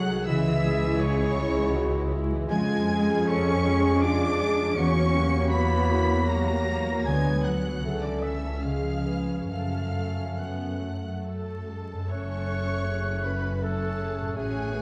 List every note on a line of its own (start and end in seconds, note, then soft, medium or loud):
0.00 0.28 C2 medium
0.00 0.31 C3 medium
0.00 0.11 F#3 medium
0.00 0.29 F#3 loud
0.00 0.63 G#3 medium
0.00 0.24 F#4 medium
0.00 0.31 F#4 medium
0.00 1.37 G#4 medium
0.00 1.74 G#4 loud
0.00 0.31 D#5 medium
0.00 0.25 F#5 loud
0.00 0.26 F#5 loud
0.00 0.28 F#5 loud
0.00 0.28 F#6 loud
0.11 0.28 D#3 medium
0.26 2.50 C#2 loud
0.26 0.45 C#3 loud
0.26 2.54 C#3 loud
0.26 0.99 E3 loud
0.26 0.96 G#3 loud
0.26 0.96 E4 loud
0.26 2.47 E4 loud
0.26 1.01 E5 loud
0.26 0.99 E5 loud
0.26 0.98 E6 loud
0.47 0.64 E3 medium
0.64 2.88 G#3 medium
0.64 0.83 G#3 medium
0.84 1.01 E3 medium
0.98 2.13 C#3 loud
0.98 2.47 G#3 loud
0.98 2.46 E4 loud
0.98 2.12 C#5 loud
0.98 1.75 C#5 medium
0.98 2.13 C#5 loud
0.98 2.12 C#6 loud
1.03 1.20 C#3 loud
1.20 1.38 E3 medium
1.38 1.57 G#3 medium
1.38 3.66 G#4 medium
1.58 1.76 E3 medium
1.73 1.94 C#3 loud
1.73 2.12 F#4 loud
1.73 3.29 C#5 medium
1.96 2.13 E3 medium
2.12 2.32 G#3 loud
2.12 2.53 E4 medium
2.12 2.50 E4 loud
2.32 2.50 E3 medium
2.47 4.77 F2 loud
2.47 4.81 F3 loud
2.47 3.25 G#3 loud
2.47 4.79 G#3 loud
2.47 4.74 C#4 loud
2.47 2.77 F4 loud
2.47 4.74 G#4 loud
2.47 3.25 G#5 loud
2.47 3.32 G#5 loud
2.47 3.26 G#5 loud
2.47 3.26 G#6 loud
2.52 2.69 C#3 loud
2.70 2.90 F3 medium
2.89 4.81 G#3 medium
2.89 3.11 G#3 loud
2.89 3.29 G#4 loud
3.10 3.30 F3 medium
3.26 4.03 C#4 loud
3.26 3.65 A4 loud
3.26 4.03 C#5 medium
3.26 4.02 C#6 loud
3.26 4.03 C#6 loud
3.30 3.49 C#3 loud
3.30 4.05 C#6 loud
3.30 4.04 C#7 loud
3.50 3.68 F3 medium
3.66 3.85 G#3 medium
3.66 4.03 G#4 loud
3.66 4.41 G#4 medium
3.85 4.03 F3 medium
4.01 4.22 C#3 loud
4.01 4.77 D4 loud
4.01 4.41 F4 loud
4.01 5.52 C#5 medium
4.01 4.77 D6 loud
4.01 4.78 D6 loud
4.01 4.77 D6 loud
4.01 4.76 D7 loud
4.23 4.41 F3 loud
4.41 4.59 G#3 medium
4.41 4.78 G#4 loud
4.41 4.82 G#4 medium
4.60 4.78 F3 medium
4.77 7.01 E2 loud
4.77 4.96 C#3 loud
4.77 7.10 E3 loud
4.77 7.68 F#3 loud
4.77 7.02 A#3 loud
4.77 5.52 C#4 loud
4.77 5.14 F#4 loud
4.77 7.84 F#4 loud
4.77 5.52 C#6 loud
4.77 5.55 C#6 loud
4.77 5.51 C#6 loud
4.77 5.51 C#7 loud
4.98 5.16 E3 medium
5.15 5.34 F#3 medium
5.15 7.10 A#3 medium
5.15 5.52 G4 loud
5.35 5.53 A#3 medium
5.50 5.71 F#3 medium
5.50 6.28 B3 loud
5.50 5.89 F#4 medium
5.50 6.28 C#5 medium
5.50 6.26 B5 loud
5.50 6.30 B5 loud
5.50 6.29 B5 loud
5.50 6.26 B6 loud
5.72 5.90 E3 medium
5.89 6.09 C#3 medium
5.89 6.28 E4 medium
5.89 7.09 A#4 medium
6.10 6.29 E3 medium
6.26 6.48 F#3 medium
6.26 7.04 A#3 loud
6.26 6.66 G4 loud
6.26 7.10 C#5 medium
6.26 7.06 A#5 loud
6.26 7.04 A#5 loud
6.26 7.05 A#6 loud
6.48 6.68 A#3 medium
6.68 6.88 F#3 medium
6.68 7.44 F#4 medium
6.68 7.07 F#4 medium
6.88 7.07 E3 medium
7.04 7.81 D2 medium
7.04 7.87 D3 medium
7.04 7.25 D3 medium
7.04 7.45 G#3 loud
7.04 7.86 B3 medium
7.04 7.84 B4 loud
7.04 7.45 G#5 loud
7.04 7.44 G#5 loud
7.04 7.46 G#5 loud
7.04 7.44 G#6 loud
7.27 7.46 F#3 medium
7.42 8.03 F#3 medium
7.42 8.23 F#4 medium
7.42 7.87 B4 medium
7.42 8.01 F#5 medium
7.42 8.05 F#5 medium
7.42 8.02 F#6 loud
7.47 7.65 B3 medium
7.67 7.85 F#3 medium
7.82 9.46 C#2 medium
7.82 8.63 C#3 medium
7.82 8.66 A3 medium
7.82 11.10 C#4 medium
7.82 8.63 A4 medium
7.86 8.03 C#3 medium
7.86 8.63 A4 medium
8.01 8.23 D3 medium
8.01 8.24 D5 medium
8.01 8.22 D5 medium
8.01 8.25 D5 medium
8.01 8.22 D6 medium
8.06 8.24 F#3 medium
8.21 8.63 E3 medium
8.21 8.43 A3 medium
8.21 8.67 F#4 medium
8.21 8.62 E5 medium
8.21 8.63 E5 medium
8.21 8.64 E5 medium
8.21 8.63 E6 medium
8.25 8.67 A4 medium
8.45 8.64 C#4 medium
8.60 8.83 C#3 medium
8.60 9.50 F3 medium
8.60 9.19 G#3 medium
8.60 9.05 G#4 medium
8.60 9.47 F5 medium
8.60 9.18 F5 medium
8.60 9.48 F6 medium
8.64 9.55 C#3 medium
8.64 9.51 G#4 medium
8.84 9.05 F3 medium
9.05 9.28 G#3 medium
9.05 9.54 G#4 medium
9.05 9.50 B4 medium
9.05 10.39 C#5 soft
9.29 9.51 C#4 medium
9.49 11.92 F#2 medium
9.49 11.85 F#2 medium
9.49 9.72 C#3 medium
9.49 10.38 F3 medium
9.49 11.72 A3 medium
9.49 11.68 A4 medium
9.49 10.30 A4 medium
9.49 10.37 F5 medium
9.49 10.41 F5 medium
9.49 10.42 F5 medium
9.49 10.37 F6 loud
9.73 9.96 F#3 medium
9.96 10.18 A3 medium
9.96 11.97 C#4 medium
10.19 10.40 C#4 medium
10.39 11.26 F#3 medium
10.39 10.81 B3 medium
10.39 11.25 C#5 medium
10.39 11.26 F#5 medium
10.39 11.27 F#5 medium
10.39 11.26 F#6 medium
10.83 11.68 A3 medium
10.83 11.68 A4 medium
11.26 12.06 A4 medium
11.26 12.07 A4 medium
11.26 12.05 C#5 medium
11.26 12.06 A5 medium
11.68 12.10 G#3 medium
11.68 12.01 A4 soft
11.94 14.32 F#2 medium
11.98 14.23 C#4 medium
12.02 14.82 A4 medium
12.06 12.38 A3 medium
12.06 13.58 A3 medium
12.06 12.38 C#4 medium
12.06 14.32 C#5 medium
12.06 13.25 C#5 medium
12.06 13.58 C#5 medium
12.06 13.24 C#6 loud
12.10 14.33 F#1 medium
12.10 14.33 F#2 medium
12.10 12.84 C#4 medium
12.10 12.84 A4 medium
12.10 13.24 C#5 loud
12.10 13.59 F#6 medium
12.88 13.60 C#4 medium
12.88 13.25 G#4 medium
13.24 13.62 F#4 medium
13.24 13.62 B4 medium
13.24 13.62 B5 loud
13.60 14.35 A3 medium
13.60 14.35 C#4 medium
13.60 13.99 A4 medium
13.60 14.37 A4 medium
13.60 14.38 A4 medium
13.60 14.36 C#5 medium
13.60 14.36 A5 loud
13.60 14.36 F#6 medium
13.98 14.36 G#4 medium
14.20 14.82 A2 medium
14.24 14.82 C#4 medium
14.29 14.82 F#4 medium
14.33 14.82 A1 medium
14.33 14.82 A3 medium
14.33 14.64 A3 medium
14.33 14.64 C#4 medium
14.33 14.74 C#4 medium
14.33 14.82 F#4 medium
14.33 14.82 G#4 loud
14.33 14.82 G#4 medium
14.33 14.82 C#5 medium
14.33 14.82 G#5 loud
14.38 14.82 A2 medium
14.38 14.82 F#6 medium
14.74 14.82 B3 medium